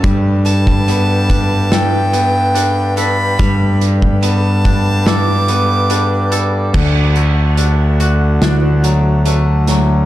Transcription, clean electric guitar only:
X:1
M:4/4
L:1/8
Q:1/4=72
K:D
V:1 name="Clean electric guitar"
G,2 B, D A B, D A | G,2 B, D A B, D A | D, A, D F D F, A, F, |]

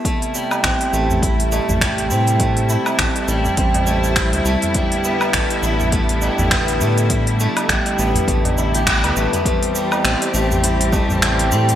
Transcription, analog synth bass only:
X:1
M:4/4
L:1/16
Q:"Swing 16ths" 1/4=102
K:Am
V:1 name="Analog synth bass" clef=bass
z4 A,,, z A,,,4 z A,,,3 A,,2- | A,,2 z2 A,,, z A,,, z A,,,4- A,,, D,, C,, z | z4 A,,, z A,,,4 z A,,,3 A,,2- | A,,2 z2 A,,, z A,,, z A,,,4- A,,, D,, A,,, z |
z4 A,,, z A,,,4 z A,,,3 A,,2 |]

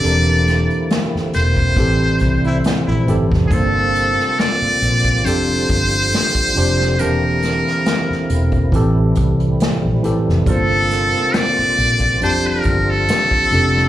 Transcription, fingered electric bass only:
X:1
M:4/4
L:1/16
Q:"Swing 16ths" 1/4=69
K:Gdor
V:1 name="Fingered electric bass" clef=bass
E,,,3 z3 E,,,2 A,,,2 C,,2 z B,,, G,,, F,,, | G,,,3 z3 B,,,2 F,,,2 G,,,2 z2 F,,,2 | E,,,3 z3 E,,,2 A,,,2 C,,2 z B,,, z F,,, | G,,,3 z3 B,,,2 F,,,2 G,,,2 z2 F,,,2 |]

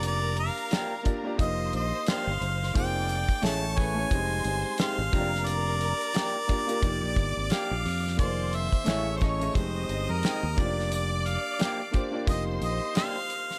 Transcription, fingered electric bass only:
X:1
M:4/4
L:1/16
Q:"Swing 16ths" 1/4=88
K:Gphr
V:1 name="Fingered electric bass" clef=bass
F,,,3 z4 z F,,,2 B,,, z2 G,,, _G,,,2 | F,,,3 z =A,,,4 F,,,2 G,,, z2 _A,,, F,,,2- | F,,,3 z4 z F,,, B,,, G,,, A,,, z B,,, F,,2 | F,,,3 z =A,,,4 F,,,2 G,,, F,, z E,, F,,,2- |
F,,,3 z4 z F,,,2 B,,, z4 z |]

